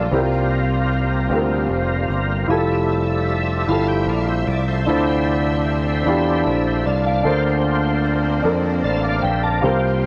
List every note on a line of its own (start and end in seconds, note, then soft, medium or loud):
0.00 4.84 G3 medium
0.00 0.14 A3 soft
0.00 0.13 A#3 medium
0.00 2.46 A#3 medium
0.00 0.14 F4 medium
0.00 2.45 F4 medium
0.00 0.13 G4 medium
0.00 0.13 A4 medium
0.00 0.30 D5 soft
0.00 0.13 F5 medium
0.11 1.27 C2 medium
0.11 1.27 C3 medium
0.11 2.46 G3 medium
0.11 0.88 C4 medium
0.11 2.48 C4 medium
0.11 2.47 C4 medium
0.11 0.18 E4 soft
0.11 0.19 E4 soft
0.11 0.89 G4 medium
0.11 2.46 A#4 medium
0.11 0.90 A#4 medium
0.19 0.92 F4 medium
0.19 2.50 F4 medium
1.30 1.67 D2 medium
1.30 2.07 C4 medium
1.30 2.07 F4 medium
1.30 2.08 G4 medium
1.34 2.09 A#4 medium
1.69 2.06 F1 medium
2.08 2.46 G1 medium
2.48 3.64 F1 medium
2.48 7.21 C3 medium
2.48 4.84 F3 medium
2.48 4.84 G3 medium
2.48 4.85 A3 medium
2.48 3.25 E4 medium
2.48 3.26 F4 medium
2.48 3.26 G4 medium
2.48 2.56 G#4 medium
2.48 3.27 A4 medium
2.48 7.21 E5 medium
2.48 3.87 E5 medium
2.57 3.70 A4 medium
3.67 4.04 G1 medium
3.67 4.45 E4 medium
3.67 4.45 F4 medium
3.67 4.46 G4 medium
3.67 4.46 A4 medium
3.67 3.87 F5 soft
3.67 3.87 A5 soft
3.88 4.07 E5 soft
3.88 4.07 G5 soft
4.07 4.44 A#1 medium
4.07 4.28 D5 soft
4.07 4.27 F5 medium
4.28 4.47 C5 soft
4.28 4.47 E5 medium
4.47 4.84 C2 medium
4.47 4.67 D5 soft
4.68 5.06 A4 soft
4.68 4.88 C5 soft
4.86 6.02 D2 medium
4.86 6.03 D3 medium
4.86 7.22 D3 medium
4.86 7.23 C4 medium
4.86 5.63 D4 medium
4.86 9.60 D4 medium
4.86 7.22 D4 medium
4.86 5.64 E4 medium
4.86 5.65 F4 medium
4.86 6.44 C5 medium
4.86 5.65 C5 medium
4.86 6.66 E5 medium
6.05 6.43 E2 medium
6.05 6.82 D4 medium
6.05 6.83 E4 medium
6.05 6.83 F4 medium
6.05 6.84 G4 medium
6.46 6.83 A#1 medium
6.46 6.84 C5 soft
6.67 6.86 C5 soft
6.67 6.85 E5 medium
6.86 7.22 C2 medium
6.86 7.05 D5 medium
6.86 7.05 F5 soft
6.86 7.05 A5 soft
7.06 7.44 D5 soft
7.06 7.44 F5 soft
7.06 7.44 F5 medium
7.23 8.40 D2 medium
7.23 8.40 D3 medium
7.23 10.06 A#3 medium
7.23 9.59 A#3 medium
7.23 9.61 C4 medium
7.23 8.01 D4 medium
7.23 9.59 D4 medium
7.23 8.42 F4 medium
7.23 8.01 A4 medium
7.23 8.02 A#4 medium
7.23 9.61 C5 medium
7.23 8.42 C5 medium
7.23 8.03 C5 medium
8.42 8.81 F2 medium
8.42 9.20 D4 medium
8.42 9.21 A4 medium
8.42 9.21 A#4 medium
8.47 8.52 C5 medium
8.53 8.82 D5 medium
8.84 9.20 A1 medium
8.84 9.03 D5 soft
8.84 9.03 F5 soft
8.84 9.03 A5 soft
9.04 9.23 D5 medium
9.04 9.23 F5 soft
9.04 9.23 F5 medium
9.22 9.60 A#1 medium
9.22 9.43 C5 soft
9.22 9.43 E5 medium
9.22 9.42 G5 medium
9.43 9.81 A#4 soft
9.43 9.81 D5 soft
9.43 9.81 A5 medium
9.61 10.06 C2 medium
9.61 10.06 C3 medium
9.61 10.06 A#3 medium
9.61 10.06 C4 medium
9.61 10.06 F4 medium
9.61 10.06 G4 medium
9.61 10.06 A#4 medium
9.61 10.06 C5 medium
9.65 10.06 C5 medium